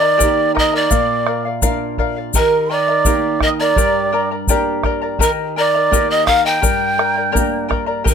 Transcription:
Already playing: D#3 D5 D6
0.01 A#4 D#5 A#5
0.18 A#3 G4 A#4 G5 A#5, bombo low, shaker
0.22 D#4 G4
0.55 A#4 D#5 G5 A#5 D#6, bombo rim, bombo low
0.59 D#5
0.72 A#4 D5 D#5 A#5 D6
0.90 A#2 A#4 D5 F5, bombo low, shaker
1.27 A#4 D5 F5, bombo rim
1.45 D5 F5
1.62 A#3 D4 F4 A#4 D5 F5, bombo low, shaker
1.98 A#4 D5 F5, bombo low
2.16 D5 F5
2.34 D#3 G4 A#4 D#5 G5 A#5, bombo low, shaker
2.70 A#4 D5 D#5 G5 A#5 D6
2.88 A#4 D#5 A#5
3.05 A#3 D#4 G4 A#4 G5 A#5, bombo low, shaker
3.41 A#4 D#5 G5 A#5, bombo rim, bombo low
3.46 D#6
3.59 A#4 D5 D#5 A#5
3.63 D6
3.76 G2 G4 A#4 D5 G5 A#5, bombo low, shaker
4.12 A#4 D5 G5 A#5
4.31 A#4 D5 A#5
4.47 A#3 D4 G4 A#4 D5 G5 A#5, bombo low, shaker
4.83 A#4 D5 G5 A#5, bombo rim, bombo low
5.02 A#4 D5 A#5
5.19 D#3 G4 A#4 D#5 G5 A#5, bombo low, shaker
5.23 A#4 A#5
5.56 A#4 D5 D#5 G5 A#5
5.61 D6
5.74 A#4 D#5 A#5
5.91 A#3 D#4 G4 A#4 D#5 G5 A#5, bombo low, shaker
6.11 D#5 D#6
6.26 A#4 D#5 F5 G5 A#5 F6, bombo rim, bombo low
6.45 A#4 D#5 G5 A#5 G6
6.62 G2 G4 A#4 D5 G5 A#5, bombo low, shaker
6.98 A#4 D5 G5 A#5, bombo rim
7.16 A#4 D5 A#5
7.32 A#3 D4 G4 A#4 D5 G5 A#5, bombo low
7.37 shaker
7.69 A#4 D5 G5 A#5, bombo rim, bombo low
7.86 A#4 D5 A#5
8.04 D#3 G4 A#4 D#5 G5 A#5, bombo low, shaker
8.08 A#5

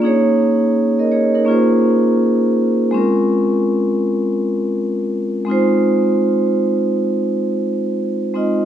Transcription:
0.00 A#3 C#4 D#4
0.05 G#4 C#5
0.99 A#4 D#5
1.12 G#4 C#5
1.35 D#4 A#4
1.45 A#3 C#4 F4
1.49 G#4 C5
2.91 G#3 C4 C#4
2.96 F4 A#4
5.45 G#3 C4 D#4
5.50 F4 C5
8.34 G#3 C4 D#4 F4 D#5

